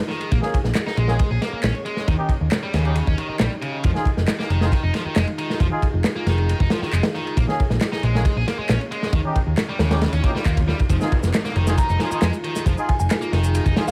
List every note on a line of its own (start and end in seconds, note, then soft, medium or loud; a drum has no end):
0.00 0.28 D#4 medium
0.00 0.27 F4 medium
0.00 2.04 G#4 medium
0.09 0.30 D#3 loud
0.09 snare soft
0.21 ride medium
0.31 0.38 A#1 loud
0.31 2.06 A#3 medium
0.31 0.37 A#3 loud
0.31 3.81 C#5 medium
0.31 kick loud
0.31 ride medium
0.42 0.56 A#3 loud
0.42 0.56 C#4 medium
0.42 0.56 G#4 loud
0.42 snare soft
0.54 kick medium
0.54 ride medium
0.64 0.71 A#1 medium
0.64 snare soft
0.75 snare loud
0.75 clap loud
0.75 ride medium
0.87 0.96 D#4 medium
0.87 snare medium
0.97 1.19 A#1 loud
0.97 1.30 G#3 loud
0.97 ride medium
1.08 1.17 A#3 medium
1.08 1.17 C#4 medium
1.08 1.17 G#4 loud
1.08 snare soft
1.19 muted picked electric bass stroke soft
1.19 kick loud
1.19 ride medium
1.31 1.37 A#1 medium
1.31 1.40 G#4 loud
1.42 1.51 A#3 loud
1.42 snare soft
1.42 ride medium
1.53 1.58 A#3 medium
1.53 muted picked electric bass stroke soft
1.63 1.70 A#1 loud
1.63 1.73 C#4 loud
1.63 snare loud
1.63 clap loud
1.63 ride medium
1.75 ride soft
1.85 2.06 G#3 loud
1.85 ride medium
1.97 snare soft
2.08 2.15 D#2 loud
2.08 2.13 D#3 loud
2.08 3.82 D#4 medium
2.08 3.82 G4 medium
2.08 kick loud
2.08 ride medium
2.19 2.33 C#4 loud
2.19 2.33 D#4 medium
2.19 2.33 G4 loud
2.29 kick medium
2.29 ride medium
2.41 2.47 D#2 medium
2.51 snare loud
2.51 clap loud
2.51 ride medium
2.63 2.73 G3 medium
2.73 3.00 D#2 loud
2.73 3.06 C#3 loud
2.73 snare medium
2.73 ride medium
2.85 2.94 C#4 medium
2.85 2.94 D#4 medium
2.85 2.94 G4 loud
2.85 ride soft
2.95 ride medium
3.07 3.14 D#2 medium
3.07 3.16 C#4 loud
3.07 kick medium
3.18 3.28 D#3 loud
3.18 ride medium
3.29 3.35 D#3 medium
3.29 muted picked electric bass stroke soft
3.39 3.47 A#1 loud
3.39 3.50 G3 loud
3.39 snare loud
3.39 clap loud
3.39 ride medium
3.62 3.83 C#3 loud
3.62 ride medium
3.84 3.91 F1 loud
3.84 3.90 F3 loud
3.84 7.34 D#4 medium
3.84 7.33 F4 medium
3.84 9.09 G#4 medium
3.84 kick loud
3.84 ride medium
3.95 4.09 D#4 medium
3.95 4.09 F4 medium
3.95 4.09 G#4 loud
3.95 snare soft
4.05 kick loud
4.05 ride medium
4.17 4.24 F1 medium
4.17 snare soft
4.28 snare loud
4.28 clap loud
4.28 ride medium
4.39 4.49 A#3 medium
4.39 snare medium
4.50 4.72 F1 loud
4.50 4.82 D#3 loud
4.50 ride medium
4.61 4.70 D#4 medium
4.61 4.70 F4 medium
4.61 4.70 G#4 loud
4.61 snare medium
4.72 kick loud
4.72 ride medium
4.83 4.90 F1 medium
4.83 4.93 D#4 loud
4.94 5.04 F3 loud
4.94 snare soft
4.94 ride medium
5.05 5.16 D#3 medium
5.05 muted picked electric bass stroke soft
5.16 5.23 F1 loud
5.16 5.26 G#3 loud
5.16 snare loud
5.16 clap loud
5.16 ride medium
5.27 ride soft
5.38 5.60 D#3 loud
5.38 ride medium
5.50 snare soft
5.60 5.67 F1 loud
5.60 5.66 F3 loud
5.60 kick loud
5.60 ride medium
5.72 5.86 D#4 loud
5.72 5.86 F4 medium
5.72 5.86 G#4 loud
5.82 kick medium
5.82 ride medium
5.93 6.00 F1 medium
6.04 snare loud
6.04 clap loud
6.04 ride medium
6.16 6.26 A#3 medium
6.26 6.53 F1 loud
6.26 6.59 D#3 loud
6.26 snare soft
6.26 ride medium
6.38 ride soft
6.49 ride medium
6.60 6.67 F1 medium
6.60 6.69 D#4 loud
6.60 kick loud
6.70 6.80 F3 loud
6.70 snare loud
6.70 ride medium
6.82 6.92 D#3 medium
6.82 muted picked electric bass stroke soft
6.82 snare soft
6.93 7.00 F1 loud
6.93 7.03 G#3 loud
6.93 clap loud
6.93 ride medium
7.03 snare loud
7.03 ride medium
7.14 7.36 D#3 loud
7.14 snare soft
7.27 ride medium
7.37 7.44 A#1 loud
7.37 7.43 A#3 loud
7.37 9.12 A#3 medium
7.37 10.87 C#5 medium
7.37 kick loud
7.37 ride medium
7.48 7.62 A#3 loud
7.48 7.62 C#4 medium
7.48 7.62 G#4 loud
7.48 snare soft
7.60 kick loud
7.60 ride medium
7.70 7.77 A#1 medium
7.70 snare medium
7.81 snare loud
7.81 clap loud
7.81 ride medium
7.92 8.02 D#4 medium
7.92 snare medium
8.03 8.25 A#1 loud
8.03 8.35 G#3 loud
8.03 ride medium
8.15 8.23 A#3 medium
8.15 8.23 C#4 medium
8.15 8.23 G#4 loud
8.15 snare medium
8.25 kick loud
8.25 ride medium
8.36 8.43 A#1 medium
8.36 8.46 G#4 medium
8.48 8.57 A#3 loud
8.48 snare medium
8.48 ride medium
8.59 8.69 G#3 medium
8.59 muted picked electric bass stroke soft
8.69 8.76 A#1 loud
8.69 8.79 C#4 loud
8.69 snare loud
8.69 clap loud
8.69 ride medium
8.81 ride soft
8.92 9.12 G#3 loud
8.92 ride medium
9.03 snare soft
9.13 9.20 D#2 loud
9.13 9.19 D#3 loud
9.13 10.88 D#4 medium
9.13 10.88 G4 medium
9.13 kick loud
9.13 ride medium
9.25 9.39 C#4 loud
9.25 9.39 D#4 medium
9.25 9.39 G4 loud
9.36 kick medium
9.36 ride medium
9.47 9.53 D#2 medium
9.57 snare loud
9.57 clap loud
9.57 ride medium
9.69 9.79 G3 medium
9.79 10.06 D#2 loud
9.79 10.12 C#3 loud
9.79 snare loud
9.79 ride medium
9.91 9.99 C#4 medium
9.91 9.99 D#4 medium
9.91 9.99 G4 loud
9.91 snare loud
9.91 ride medium
10.01 snare medium
10.01 ride medium
10.01 swell medium
10.13 10.19 D#2 medium
10.13 10.22 C#4 loud
10.13 ride medium
10.24 10.30 A#3 loud
10.24 10.33 C#4 medium
10.24 10.33 D#4 medium
10.24 10.33 G4 medium
10.24 kick loud
10.24 ride medium
10.35 10.44 G3 medium
10.35 muted picked electric bass stroke soft
10.35 snare soft
10.45 10.72 D#2 medium
10.45 10.56 A#3 loud
10.45 kick medium
10.45 clap loud
10.45 ride medium
10.57 kick loud
10.57 ride medium
10.68 10.78 G3 loud
10.68 snare soft
10.79 kick medium
10.79 ride medium
10.90 10.97 F1 loud
10.90 10.96 F3 loud
10.90 13.91 D#4 medium
10.90 13.91 F4 medium
10.90 13.91 G#4 medium
10.90 kick loud
10.90 ride medium
10.90 downlifter medium
10.90 shaker medium
11.01 11.15 D#4 loud
11.01 11.15 F4 medium
11.01 11.15 G#4 loud
11.01 snare medium
11.01 shaker soft
11.12 kick loud
11.12 ride medium
11.23 11.30 F1 medium
11.23 snare medium
11.23 shaker medium
11.34 snare loud
11.34 clap loud
11.34 ride medium
11.34 shaker medium
11.45 11.55 A#3 medium
11.45 snare medium
11.45 shaker soft
11.56 11.77 F1 loud
11.56 11.88 D#3 loud
11.56 ride medium
11.67 11.76 D#4 medium
11.67 11.76 F4 medium
11.67 11.76 G#4 loud
11.67 snare medium
11.67 shaker medium
11.78 11.91 A#5 medium
11.78 kick loud
11.78 ride medium
11.78 shaker medium
11.89 11.96 F1 medium
11.89 11.99 D#4 loud
11.89 shaker soft
12.00 12.10 F3 loud
12.00 12.10 D#4 medium
12.00 12.10 F4 medium
12.00 12.10 G#4 medium
12.00 snare medium
12.00 ride medium
12.11 12.22 D#3 medium
12.11 12.25 D#4 medium
12.11 12.25 F4 medium
12.11 12.25 G#4 loud
12.11 muted picked electric bass stroke soft
12.11 shaker medium
12.22 12.29 F2 loud
12.22 12.32 G#3 loud
12.22 snare loud
12.22 clap loud
12.22 ride medium
12.22 shaker medium
12.33 ride soft
12.33 shaker soft
12.44 12.65 D#3 loud
12.44 ride medium
12.56 snare soft
12.56 shaker medium
12.66 12.73 F1 loud
12.66 12.72 F3 loud
12.66 kick loud
12.66 ride medium
12.66 shaker medium
12.77 12.91 D#4 loud
12.77 12.91 F4 medium
12.77 12.91 G#4 loud
12.77 shaker soft
12.89 12.96 G#5 medium
12.89 kick loud
12.89 ride medium
13.00 13.06 F1 medium
13.00 13.07 G#5 medium
13.00 shaker medium
13.10 snare loud
13.10 clap loud
13.10 ride loud
13.10 shaker medium
13.21 13.31 A#3 medium
13.21 shaker soft
13.32 13.59 F1 loud
13.32 13.65 D#3 loud
13.32 snare soft
13.32 ride medium
13.44 ride soft
13.44 shaker medium
13.55 ride loud
13.55 shaker medium
13.65 13.72 F1 medium
13.65 13.75 D#4 loud
13.65 kick medium
13.65 shaker soft
13.76 13.86 F3 loud
13.76 13.86 D#4 medium
13.76 13.86 F4 medium
13.76 13.86 G#4 medium
13.76 snare loud
13.76 ride medium
13.87 13.91 D#3 medium
13.87 13.91 D#4 medium
13.87 13.91 F5 medium
13.87 snare soft
13.87 shaker medium